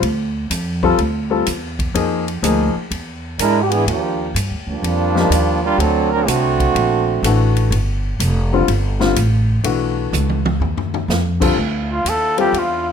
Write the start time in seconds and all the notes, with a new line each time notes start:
0.02 D2, ride
0.50 F2, hi-hat pedal, ride
0.83 G3 C4 F4 A4, kick
0.98 D2, ride
1.30 G3 C4 F4 A4
1.46 E2, hi-hat pedal, ride
1.79 kick, ride
1.94 F2 F3 A#3 D#4 G#4, ride
2.28 ride
2.42 D2 F3 A#3 D#4 G#4, hi-hat pedal, ride
2.75 muted upright bass stroke
2.91 E2, ride
3.39 G#2 G#3 D4 E4 A#4, hi-hat pedal, ride
3.62 G4
3.70 E3 B3 D4 G#4, ride
3.86 D#2 F3 A#3 D4 G4, ride
4.34 G2, hi-hat pedal, ride
4.51 D#2
4.67 D2 F3 G3 A#3 D4
4.82 F2, ride
5.15 F3 A#3 D#4 G4, snare
5.30 D#2, hi-hat pedal, ride
5.63 G3 A#3 D4 F4
5.78 D2 F#3 C4 D4 A4, ride
6.12 F#3 C4 D4 A#4
6.27 C2 D3 A3 C4 F#4, hi-hat pedal, ride
6.60 kick, ride
6.75 A#1, ride
7.23 A1 E3 A3 D4 F#4, hi-hat pedal, ride
7.56 ride
7.71 G1, ride
8.19 F1, hi-hat pedal, ride
8.53 D3 G3 C4 F4
8.68 G1, ride
9.00 D3 G3 C4 F4, snare
9.16 A1, hi-hat pedal, ride
9.64 B1 E3 A3 D4 F#4, ride
10.12 C#2, hi-hat pedal, high tom
10.29 high tom
10.46 high tom
10.60 D#2, floor tom
10.77 floor tom
10.94 floor tom
11.08 F2, snare, hi-hat pedal
11.40 D3 G3 C4 F4 A4, kick, crash
11.56 D2 D3 C4 E4 F4
11.92 F4
12.05 D#2, hi-hat pedal, ride
12.09 A4
12.37 G3 C4 F4 G4 A4, ride
12.53 E2, ride
12.59 F4